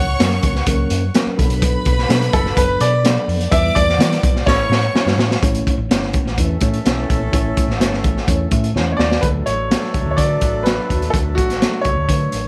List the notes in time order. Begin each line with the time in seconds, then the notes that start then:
Already playing: C#2 C#5 F#5 C#6
0.19 F#2 F#3 A#3 C#4 A#4, snare, closed hi-hat
0.32 snare
0.43 C#2, kick, closed hi-hat
0.55 snare
0.66 C#2 F#3 A#3 C#4 A#4, kick, closed hi-hat
0.90 F#2, closed hi-hat
1.14 F#3 A#3 C#4 A#4, snare, closed hi-hat
1.26 muted fingered electric bass stroke
1.37 B1 F#3 B3 D4 A4 B4 B5, kick, closed hi-hat
1.50 closed hi-hat
1.62 kick, closed hi-hat
1.85 B1, kick, closed hi-hat
1.99 snare
2.08 B2 F#3 B3 C#4 A4, snare, closed hi-hat
2.15 D4
2.22 snare, closed hi-hat
2.33 F#1 A4, kick, closed hi-hat
2.46 snare
2.56 F#1 F#3 B3 D4 A4 B4, kick, closed hi-hat
2.80 B2 D5, closed hi-hat
3.03 F#3 B3 D4 A4, snare, closed hi-hat
3.28 F2, open hi-hat
3.41 closed hi-hat
3.51 E2 G3 B3 E4 B4 D5 E5 D6, kick, closed hi-hat
3.75 E2 D5, kick, closed hi-hat
3.89 snare
3.98 E3 G3 B3 E4 B4, snare, closed hi-hat
4.12 snare, closed hi-hat
4.23 B1, kick, closed hi-hat
4.36 snare
4.46 A1 A3 C#4 E4 C#5 C#6, kick, snare
4.70 A2, snare
4.94 A3 C#4 E4 C5, muted fingered electric bass stroke, snare
5.01 C#5
5.06 G2, snare
5.17 A2, snare
5.31 snare
5.43 A1 A3 C#4 E4 C#5, kick, closed hi-hat
5.55 closed hi-hat
5.67 kick, closed hi-hat
5.78 A1
5.91 A3 C#4 E4 C#5, snare, closed hi-hat
6.03 snare
6.13 kick, closed hi-hat
6.25 A1, snare
6.37 E2 E3 A3 C#4 E4 A4 B4, kick, closed hi-hat
6.61 A2 A3 C#4 E4 C#5, kick, closed hi-hat
6.74 closed hi-hat
6.85 B1 A3 C#4 E4 C#5, snare, closed hi-hat
7.10 A#1, kick, closed hi-hat
7.32 A1 A3 C#4 E4 C#5, kick, closed hi-hat
7.57 kick, closed hi-hat
7.68 A1, snare
7.80 G1 A3 C#4 E4 B4, snare, closed hi-hat
7.87 C#5
7.93 snare
8.04 A1, kick, closed hi-hat
8.17 snare
8.28 E2 A3 C#4 E4 C#5, kick, closed hi-hat
8.51 A2 A3 C#4 E4 E5, kick, closed hi-hat
8.64 closed hi-hat
8.74 E2 A3 C#4 E4 C#5, snare
8.92 C#5
8.97 D#2 D5, snare
9.12 snare
9.21 D2 F#3 A3 D4 A4 B4, kick, closed hi-hat
9.46 A1 C#5, closed hi-hat
9.70 F#3 A3 D4 G4, snare, closed hi-hat
9.77 A4
9.83 snare
9.94 C#2, kick, closed hi-hat
10.06 D2
10.11 C#5
10.17 D3 F3 A3 D4 B4 D5, kick, closed hi-hat
10.23 F#3
10.41 A1, kick, closed hi-hat
10.63 F#3 A3 D4 B4, snare, closed hi-hat
10.67 F#4
10.90 D#2, kick, closed hi-hat
11.02 closed hi-hat
11.10 D2 F#3 A3 D4 A4, kick, closed hi-hat
11.35 A1 F#4, kick, closed hi-hat
11.50 snare, closed hi-hat
11.61 F#3 A3 D4 A4, snare, closed hi-hat
11.81 C#2 C#5, kick, closed hi-hat
11.97 D2
12.09 D3 F#3 A3 D4 B4, kick, closed hi-hat
12.32 A1, closed hi-hat